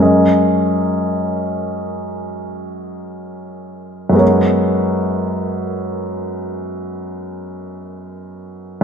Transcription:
Already playing: F#2 G#3 C#4
0.00 A#4 D#5
4.10 F#2 G#3
4.14 B3 A#4
4.19 C#5

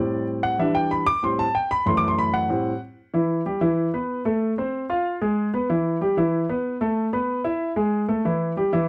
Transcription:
Already playing: A2 G3 C4 D5
0.43 F#5
0.58 E3 G3 D4 E5
0.75 G5
0.91 B5
1.06 D6
1.23 A2 G3 C4 C6
1.39 A5
1.55 G5
1.71 B5
1.86 F#2 E3 A3 C6
1.97 D6
2.08 C6
2.19 B5
2.34 F#5
2.49 A2 G3 C4
3.14 E3 E4
3.46 G3 G4
3.61 E3 E4
3.94 B3 B4
4.25 A3 A4
4.58 C4 C5
4.90 F4 F5
5.21 G#3 G#4
5.54 B3 B4
5.70 E3 E4
6.01 G3 G4
6.17 E3 E4
6.49 B3 B4
6.81 A3 A4
7.13 B3 B4
7.44 E4 E5
7.76 G#3 G#4
8.08 A3 A4
8.25 E3 E4
8.57 G3 G4
8.73 E3 E4

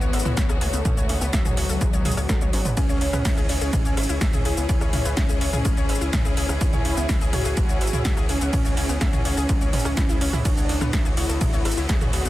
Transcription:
Already playing: D3 E3 B3 F#4 B4 C#5 F#5
0.01 C#2 C#5, shaker
0.13 G#1 E5, open hi-hat, shaker
0.19 shaker
0.25 C#2 E4, mid tom, shaker
0.37 C#2 E5, kick, snare, shaker
0.49 C#2 G#4, cross-stick, shaker
0.61 C#2 A3 G#4, open hi-hat, shaker
0.73 C#2 B3, shaker
0.85 C#4, kick, mid tom, shaker
0.97 C#2 C#5, shaker
1.09 C#2 C#4, open hi-hat, shaker
1.21 C#2 B3, shaker
1.33 F#3 E5, kick, cross-stick, snare, shaker
1.45 C#2 G#4, mid tom, shaker
1.57 C#2 C#5, open hi-hat, shaker
1.69 C#2 A4, shaker
1.81 G#1 G#3, kick, shaker
1.93 C#2 C#5, shaker
2.05 C#2 G#4, mid tom, open hi-hat, shaker
2.11 shaker
2.17 C#2 C#5, cross-stick, shaker
2.29 G#1 A4, kick, snare, high tom, shaker
2.41 C#2 C#5, high tom, shaker
2.53 G#1 C#4, open hi-hat, shaker
2.65 G#1 B3, mid tom, shaker
2.77 C#2 E3 C#4 E4 G#4, kick, ride, shaker
2.84 G#4
2.89 C#2 C#5 G#5, shaker
3.01 C#2 C#4, open hi-hat
3.13 C#2 B3, cross-stick, mid tom, shaker
3.25 C#2 E5, kick, snare, ride, shaker
3.37 C#2 G#4, shaker
3.49 C#2 C#4 C#5, open hi-hat, shaker
3.61 C#2 G#4, shaker
3.73 G#1 G#3, kick, mid tom, ride, shaker
3.85 C#2 C#5, shaker
3.97 G#1 E5, cross-stick, open hi-hat, shaker
4.03 shaker
4.09 C#2 E4, shaker
4.21 E5, kick, snare, ride, shaker
4.33 C#2 G#4, mid tom, shaker
4.45 C#2 E4 G#4, open hi-hat, shaker
4.57 C#2 B3, shaker
4.69 C#2 C#4, kick, ride, shaker
4.81 C#2 C#5, cross-stick, shaker
4.93 C#2 C#4, mid tom, open hi-hat
5.05 C#2 B3, shaker
5.17 C#4 E5, kick, snare, ride, shaker
5.29 C#2 G#4, shaker
5.41 C#2 C#5, open hi-hat, shaker
5.53 C#2 G#4, mid tom, shaker
5.65 G#1 G#3, kick, cross-stick, ride, shaker
5.77 C#2 C#5, shaker
5.89 G#1 E5, open hi-hat, shaker
5.95 shaker
6.01 C#2 E4, shaker
6.13 C#2 E5, kick, snare, mid tom, ride, shaker
6.19 F#5
6.25 C#2 G#4, shaker
6.37 C#2 G#4, open hi-hat, shaker
6.49 C#2 B3, cross-stick, shaker
6.61 C#2 C#4 E4, kick, ride, shaker
6.73 C#2 C#5, mid tom, shaker
6.85 C#2 C#4, open hi-hat
6.97 C#2 B3, shaker
7.09 E5, kick, snare, ride, shaker
7.21 C#2 G#4, shaker
7.33 C#2 F#4 C#5, cross-stick, mid tom, open hi-hat, shaker
7.45 C#2 G#4, shaker
7.57 G#1 G#3, kick, ride, shaker
7.69 C#2 C#5, shaker
7.81 G#1 E5, open hi-hat, shaker
7.87 shaker
7.93 C#2 E4, mid tom, shaker
8.05 E5, kick, snare, ride, shaker
8.17 C#2 G#4, cross-stick, shaker
8.29 C#2 C#4 G#4, open hi-hat, shaker
8.41 C#2 B3, shaker
8.53 C#4, kick, mid tom, ride, shaker
8.65 C#2 C#5, shaker
8.77 C#2 C#4, open hi-hat, shaker
8.89 C#2 B3, shaker
9.01 C#2 C#4 E5, kick, cross-stick, snare, ride, shaker
9.13 C#2 G#4, mid tom, shaker
9.25 C#2 C#5, open hi-hat, shaker
9.37 C#2 G#4, shaker
9.49 G#1 G#3, kick, ride, shaker
9.61 C#2 C#5, shaker
9.73 G#1 C#4, mid tom, open hi-hat, shaker
9.79 shaker
9.85 C#2 C#4, cross-stick, shaker
9.97 C#2 E4, kick, snare, ride, shaker
10.09 C#2 E4, shaker
10.21 C#2 C#4, open hi-hat, shaker
10.33 C#2 E4, mid tom, shaker
10.45 D3 B3 C#4 D4 F#4, kick, ride, shaker
10.54 C#2 C#5 D6, shaker
10.69 C#2 C#4 B5, open hi-hat
10.81 C#2 B3, cross-stick, mid tom, shaker
10.93 C#2 E5, kick, snare, ride, shaker
11.05 C#2 G#4, shaker
11.17 C#2 E4 C#5, open hi-hat, shaker
11.29 C#2 A4, shaker
11.41 G#1 G#3, kick, mid tom, ride, shaker
11.53 C#2 C#5, shaker
11.65 G#1 E5, cross-stick, open hi-hat, shaker
11.71 shaker
11.77 C#2 E4, shaker
11.89 C#2 G#4, kick, snare, ride, shaker
12.01 C#2 G#4, mid tom, shaker
12.13 C#2 F#4 G#4, open hi-hat, shaker
12.25 C#2 B3, shaker

